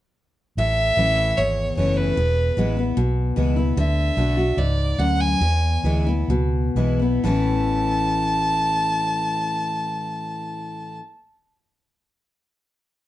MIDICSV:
0, 0, Header, 1, 4, 480
1, 0, Start_track
1, 0, Key_signature, 3, "major"
1, 0, Tempo, 398936
1, 699, Time_signature, 4, 2, 24, 8
1, 5021, Tempo, 418118
1, 6941, Tempo, 467290
1, 8381, Tempo, 497100
1, 14006, End_track
2, 0, Start_track
2, 0, Title_t, "Fiddle"
2, 0, Program_c, 0, 110
2, 700, Note_on_c, 0, 76, 110
2, 1648, Note_on_c, 0, 73, 85
2, 1666, Note_off_c, 0, 76, 0
2, 2123, Note_off_c, 0, 73, 0
2, 2130, Note_on_c, 0, 73, 87
2, 2374, Note_on_c, 0, 71, 80
2, 2392, Note_off_c, 0, 73, 0
2, 3335, Note_off_c, 0, 71, 0
2, 4555, Note_on_c, 0, 76, 85
2, 5487, Note_on_c, 0, 74, 85
2, 5504, Note_off_c, 0, 76, 0
2, 5957, Note_on_c, 0, 78, 93
2, 5974, Note_off_c, 0, 74, 0
2, 6206, Note_on_c, 0, 80, 95
2, 6223, Note_off_c, 0, 78, 0
2, 7172, Note_off_c, 0, 80, 0
2, 8379, Note_on_c, 0, 81, 94
2, 11961, Note_off_c, 0, 81, 0
2, 14006, End_track
3, 0, Start_track
3, 0, Title_t, "Steel-string acoustic guitar"
3, 0, Program_c, 1, 25
3, 701, Note_on_c, 1, 45, 81
3, 1166, Note_on_c, 1, 52, 56
3, 1177, Note_on_c, 1, 57, 56
3, 1184, Note_on_c, 1, 61, 60
3, 1191, Note_on_c, 1, 64, 64
3, 1611, Note_off_c, 1, 45, 0
3, 1628, Note_off_c, 1, 52, 0
3, 1633, Note_off_c, 1, 57, 0
3, 1636, Note_off_c, 1, 61, 0
3, 1640, Note_off_c, 1, 64, 0
3, 1658, Note_on_c, 1, 40, 84
3, 2135, Note_on_c, 1, 52, 58
3, 2142, Note_on_c, 1, 57, 54
3, 2151, Note_on_c, 1, 61, 62
3, 2158, Note_on_c, 1, 64, 65
3, 2569, Note_off_c, 1, 40, 0
3, 2592, Note_off_c, 1, 52, 0
3, 2595, Note_off_c, 1, 57, 0
3, 2600, Note_off_c, 1, 61, 0
3, 2604, Note_off_c, 1, 64, 0
3, 2615, Note_on_c, 1, 40, 79
3, 3091, Note_on_c, 1, 52, 60
3, 3103, Note_on_c, 1, 56, 67
3, 3109, Note_on_c, 1, 59, 64
3, 3115, Note_on_c, 1, 64, 68
3, 3316, Note_off_c, 1, 64, 0
3, 3324, Note_off_c, 1, 52, 0
3, 3330, Note_off_c, 1, 56, 0
3, 3330, Note_on_c, 1, 64, 51
3, 3333, Note_off_c, 1, 59, 0
3, 3354, Note_on_c, 1, 59, 49
3, 3528, Note_off_c, 1, 40, 0
3, 3564, Note_off_c, 1, 64, 0
3, 3572, Note_on_c, 1, 47, 85
3, 3576, Note_off_c, 1, 59, 0
3, 4043, Note_on_c, 1, 52, 65
3, 4051, Note_on_c, 1, 56, 56
3, 4060, Note_on_c, 1, 59, 58
3, 4067, Note_on_c, 1, 64, 62
3, 4271, Note_off_c, 1, 64, 0
3, 4281, Note_off_c, 1, 52, 0
3, 4285, Note_off_c, 1, 56, 0
3, 4285, Note_on_c, 1, 64, 52
3, 4289, Note_off_c, 1, 59, 0
3, 4311, Note_on_c, 1, 59, 37
3, 4487, Note_off_c, 1, 47, 0
3, 4522, Note_off_c, 1, 64, 0
3, 4535, Note_off_c, 1, 59, 0
3, 4540, Note_on_c, 1, 50, 83
3, 4999, Note_off_c, 1, 50, 0
3, 5014, Note_on_c, 1, 50, 63
3, 5021, Note_on_c, 1, 57, 56
3, 5029, Note_on_c, 1, 62, 67
3, 5037, Note_on_c, 1, 66, 65
3, 5233, Note_off_c, 1, 66, 0
3, 5239, Note_off_c, 1, 50, 0
3, 5243, Note_off_c, 1, 57, 0
3, 5246, Note_on_c, 1, 66, 55
3, 5247, Note_off_c, 1, 62, 0
3, 5271, Note_on_c, 1, 62, 45
3, 5473, Note_off_c, 1, 66, 0
3, 5485, Note_off_c, 1, 62, 0
3, 5488, Note_on_c, 1, 44, 76
3, 5936, Note_off_c, 1, 44, 0
3, 5963, Note_on_c, 1, 42, 83
3, 6420, Note_off_c, 1, 42, 0
3, 6446, Note_on_c, 1, 40, 84
3, 6937, Note_on_c, 1, 52, 52
3, 6944, Note_on_c, 1, 56, 62
3, 6953, Note_on_c, 1, 59, 69
3, 6960, Note_on_c, 1, 64, 71
3, 7154, Note_off_c, 1, 64, 0
3, 7158, Note_off_c, 1, 52, 0
3, 7161, Note_off_c, 1, 56, 0
3, 7166, Note_off_c, 1, 59, 0
3, 7166, Note_on_c, 1, 64, 55
3, 7188, Note_on_c, 1, 59, 46
3, 7356, Note_off_c, 1, 40, 0
3, 7391, Note_off_c, 1, 64, 0
3, 7401, Note_off_c, 1, 59, 0
3, 7406, Note_on_c, 1, 47, 80
3, 7881, Note_on_c, 1, 52, 59
3, 7887, Note_on_c, 1, 56, 59
3, 7893, Note_on_c, 1, 59, 58
3, 7902, Note_on_c, 1, 64, 61
3, 8109, Note_off_c, 1, 64, 0
3, 8118, Note_off_c, 1, 52, 0
3, 8121, Note_off_c, 1, 56, 0
3, 8121, Note_on_c, 1, 64, 48
3, 8124, Note_off_c, 1, 59, 0
3, 8146, Note_on_c, 1, 59, 46
3, 8332, Note_off_c, 1, 47, 0
3, 8367, Note_off_c, 1, 64, 0
3, 8370, Note_on_c, 1, 45, 77
3, 8379, Note_off_c, 1, 59, 0
3, 8380, Note_on_c, 1, 52, 81
3, 8387, Note_on_c, 1, 57, 77
3, 8397, Note_on_c, 1, 61, 81
3, 8402, Note_on_c, 1, 64, 94
3, 11992, Note_off_c, 1, 45, 0
3, 12001, Note_off_c, 1, 52, 0
3, 12008, Note_off_c, 1, 57, 0
3, 12018, Note_off_c, 1, 61, 0
3, 12023, Note_off_c, 1, 64, 0
3, 14006, End_track
4, 0, Start_track
4, 0, Title_t, "Fingered electric bass"
4, 0, Program_c, 2, 33
4, 688, Note_on_c, 2, 33, 82
4, 1080, Note_off_c, 2, 33, 0
4, 1165, Note_on_c, 2, 33, 76
4, 1578, Note_off_c, 2, 33, 0
4, 1655, Note_on_c, 2, 32, 68
4, 2064, Note_off_c, 2, 32, 0
4, 2128, Note_on_c, 2, 30, 70
4, 2540, Note_off_c, 2, 30, 0
4, 2609, Note_on_c, 2, 28, 85
4, 3000, Note_off_c, 2, 28, 0
4, 3091, Note_on_c, 2, 33, 79
4, 3502, Note_off_c, 2, 33, 0
4, 3570, Note_on_c, 2, 35, 76
4, 3981, Note_off_c, 2, 35, 0
4, 4055, Note_on_c, 2, 37, 80
4, 4464, Note_off_c, 2, 37, 0
4, 4531, Note_on_c, 2, 38, 83
4, 4923, Note_off_c, 2, 38, 0
4, 5015, Note_on_c, 2, 35, 85
4, 5412, Note_off_c, 2, 35, 0
4, 5477, Note_on_c, 2, 37, 76
4, 5883, Note_off_c, 2, 37, 0
4, 5954, Note_on_c, 2, 38, 71
4, 6367, Note_off_c, 2, 38, 0
4, 6435, Note_on_c, 2, 40, 89
4, 6841, Note_off_c, 2, 40, 0
4, 6931, Note_on_c, 2, 38, 84
4, 7327, Note_off_c, 2, 38, 0
4, 7389, Note_on_c, 2, 37, 72
4, 7801, Note_off_c, 2, 37, 0
4, 7873, Note_on_c, 2, 35, 77
4, 8301, Note_off_c, 2, 35, 0
4, 8374, Note_on_c, 2, 33, 88
4, 11956, Note_off_c, 2, 33, 0
4, 14006, End_track
0, 0, End_of_file